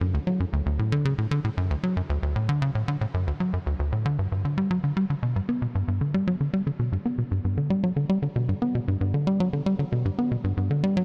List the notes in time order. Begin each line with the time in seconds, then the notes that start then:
0.01 F#2
0.14 D2
0.27 F#3
0.40 F#2
0.53 D2
0.66 D2
0.79 A2
0.92 D3
1.05 C#3
1.18 A2
1.31 D3
1.44 A2
1.57 F#2
1.70 D2
1.83 F#3
1.97 F#2
2.10 D2
2.23 D2
2.36 A2
2.49 D3
2.62 C#3
2.75 A2
2.88 D3
3.01 A2
3.14 F#2
3.27 D2
3.40 F#3
3.53 F#2
3.66 D2
3.79 D2
3.92 A2
4.06 D3
4.19 G2
4.32 G2
4.45 D3
4.58 G3
4.71 F#3
4.84 D3
4.97 G3
5.10 D3
5.23 B2
5.36 G2
5.49 B3
5.62 B2
5.75 G2
5.88 G2
6.01 D3
6.14 G3
6.27 F#3
6.41 D3
6.54 G3
6.67 D3
6.79 B2
6.92 G2
7.06 B3
7.18 B2
7.31 G2
7.45 G2
7.58 D3
7.70 G3
7.84 F#3
7.96 D3
8.09 G3
8.22 D3
8.36 B2
8.49 G2
8.62 B3
8.75 B2
8.88 G2
9.01 G2
9.14 D3
9.27 G3
9.40 F#3
9.53 D3
9.66 G3
9.79 D3
9.92 B2
10.05 G2
10.19 B3
10.32 B2
10.44 G2
10.57 G2
10.71 D3
10.84 G3
10.97 F#3